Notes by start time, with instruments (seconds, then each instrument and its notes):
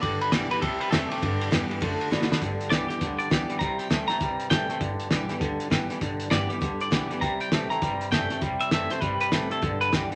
0.02 upright bass G1, steel-string acoustic guitar G2, clean electric guitar G2 D3 D5, kick, ride
0.20 clean electric guitar B4, muted upright bass stroke, ride
0.32 upright bass B1, clean electric guitar G2 E3 D5, steel-string acoustic guitar D3 G3 B3 G4, snare, ride
0.50 clean electric guitar G2 E3 B4, steel-string acoustic guitar B3 G4, muted upright bass stroke, ride
0.62 upright bass C2, clean electric guitar C3 G3 A4, steel-string acoustic guitar C3, kick, ride
0.80 clean electric guitar B4, muted upright bass stroke, ride
0.91 upright bass E2, clean electric guitar C3 A3 A4, steel-string acoustic guitar E3 G3 C4 E4, snare, ride
1.09 clean electric guitar C3 A3 G4, steel-string acoustic guitar C4 E4, muted upright bass stroke, ride
1.22 clean electric guitar G2 D3, steel-string acoustic guitar G2, upright bass G2, kick, ride
1.40 muted upright bass stroke, ride
1.51 upright bass E2, clean electric guitar G2 E3, steel-string acoustic guitar D3 G3 B3 G4, snare, ride
1.69 clean electric guitar G2 E3, steel-string acoustic guitar B3 G4, muted upright bass stroke, ride
1.81 upright bass F#2, steel-string acoustic guitar D3, clean electric guitar D3 A3, kick, ride
2.00 muted upright bass stroke, ride
2.10 upright bass A2, steel-string acoustic guitar D3 A3 D4 F#4, clean electric guitar D3 B3, snare
2.22 snare
2.29 clean electric guitar D3 B3, steel-string acoustic guitar D4 F#4, muted upright bass stroke, snare
2.41 steel-string acoustic guitar G2, upright bass G2, clean electric guitar G2 D3, kick, closed hi-hat
2.60 muted upright bass stroke, closed hi-hat
2.70 upright bass C2, clean electric guitar G2 E3 D5, steel-string acoustic guitar D3 G3 B3 G4, snare, closed hi-hat
2.89 clean electric guitar G2 E3 G4, steel-string acoustic guitar B3 G4, muted upright bass stroke, closed hi-hat
3.01 upright bass D2, clean electric guitar G2 D3, steel-string acoustic guitar D3, kick, closed hi-hat
3.19 clean electric guitar D5, muted upright bass stroke, closed hi-hat
3.30 upright bass C#2, clean electric guitar G2 E3, steel-string acoustic guitar D3 G3 B3 G4, kick, snare, closed hi-hat
3.49 clean electric guitar G2 E3, muted upright bass stroke, closed hi-hat
3.59 upright bass C2, clean electric guitar C3 G3 A#5, steel-string acoustic guitar C3, kick, closed hi-hat
3.78 clean electric guitar G5, muted upright bass stroke, closed hi-hat
3.90 upright bass D2, clean electric guitar C3 A3, steel-string acoustic guitar E3 G3 C4 E4, snare, closed hi-hat
4.08 clean electric guitar C3 A3 A#5, steel-string acoustic guitar C4 E4, muted upright bass stroke, snare, closed hi-hat
4.20 upright bass C2, steel-string acoustic guitar G2, clean electric guitar C3 G3, kick, closed hi-hat
4.40 muted upright bass stroke, closed hi-hat
4.50 upright bass A1, clean electric guitar C3 A3 G5, steel-string acoustic guitar E3 G3 C4 E4, kick, snare, closed hi-hat
4.68 clean electric guitar C3 A3, steel-string acoustic guitar C4 E4, muted upright bass stroke, closed hi-hat
4.80 upright bass G1, clean electric guitar G2 D3, steel-string acoustic guitar G2, kick, closed hi-hat
4.99 muted upright bass stroke, closed hi-hat
5.10 upright bass B1, clean electric guitar G2 E3, steel-string acoustic guitar D3 G3 B3 G4, snare, closed hi-hat
5.29 clean electric guitar G2 E3, steel-string acoustic guitar B3 G4, muted upright bass stroke, snare, closed hi-hat
5.40 upright bass D2, clean electric guitar G2 D3, steel-string acoustic guitar D3, kick, closed hi-hat
5.60 muted upright bass stroke, closed hi-hat
5.70 clean electric guitar G2 E3, upright bass A2, steel-string acoustic guitar D3 G3 B3 G4, kick, snare, closed hi-hat
5.89 clean electric guitar G2 E3, steel-string acoustic guitar B3 G4, muted upright bass stroke, closed hi-hat
6.01 clean electric guitar G2 D3, steel-string acoustic guitar G2, upright bass B2, kick, closed hi-hat
6.20 muted upright bass stroke, closed hi-hat
6.30 upright bass G2, clean electric guitar G2 E3 D5, steel-string acoustic guitar D3 G3 B3 G4, snare, closed hi-hat
6.49 clean electric guitar G2 E3 G4, steel-string acoustic guitar B3 G4, muted upright bass stroke, closed hi-hat
6.61 upright bass D2, clean electric guitar G2 D3, steel-string acoustic guitar D3, kick, closed hi-hat
6.80 clean electric guitar D5, muted upright bass stroke, closed hi-hat
6.91 upright bass B1, clean electric guitar G2 E3, steel-string acoustic guitar D3 G3 B3 G4, kick, snare, closed hi-hat
7.10 clean electric guitar G2 E3, steel-string acoustic guitar B3 G4, muted upright bass stroke, closed hi-hat
7.21 upright bass C2, clean electric guitar C3 G3 A#5, steel-string acoustic guitar C3, kick, closed hi-hat
7.40 clean electric guitar G5, muted upright bass stroke, closed hi-hat
7.52 upright bass A1, clean electric guitar C3 A3, steel-string acoustic guitar E3 G3 C4 E4, snare, closed hi-hat
7.70 clean electric guitar C3 A3 A#5, steel-string acoustic guitar C4 E4, muted upright bass stroke, closed hi-hat
7.82 upright bass G1, steel-string acoustic guitar G2, clean electric guitar C3 G3, kick, closed hi-hat
8.01 muted upright bass stroke, closed hi-hat
8.11 upright bass F#1, clean electric guitar C3 A3 G5, steel-string acoustic guitar E3 G3 C4 E4, kick, snare, closed hi-hat
8.30 clean electric guitar C3 A3, steel-string acoustic guitar C4 E4, muted upright bass stroke, closed hi-hat
8.41 upright bass E1, clean electric guitar C3 G3, steel-string acoustic guitar C3, kick, closed hi-hat
8.60 clean electric guitar E5, muted upright bass stroke, closed hi-hat
8.71 upright bass F#1, clean electric guitar C3 A3 E5, steel-string acoustic guitar E3 G3 C4 E4, snare, closed hi-hat
8.90 clean electric guitar C3 A3 C5, steel-string acoustic guitar C4 E4, muted upright bass stroke, snare, closed hi-hat
9.01 upright bass G1, steel-string acoustic guitar G2, clean electric guitar C3 G3 B4, kick, closed hi-hat
9.20 clean electric guitar B4, muted upright bass stroke, closed hi-hat
9.31 upright bass A1, clean electric guitar C3 A3, steel-string acoustic guitar E3 G3 C4 E4, kick, snare, closed hi-hat
9.50 clean electric guitar C3 A3 A4, steel-string acoustic guitar C4 E4, muted upright bass stroke, closed hi-hat
9.62 upright bass B1, steel-string acoustic guitar G2, clean electric guitar G2 D3, kick, closed hi-hat
9.81 clean electric guitar B4, muted upright bass stroke, closed hi-hat
9.92 upright bass C#2, clean electric guitar G2 E3, steel-string acoustic guitar D3 G3 B3 G4, snare, closed hi-hat
10.10 clean electric guitar G2 E3, steel-string acoustic guitar G4, muted upright bass stroke, closed hi-hat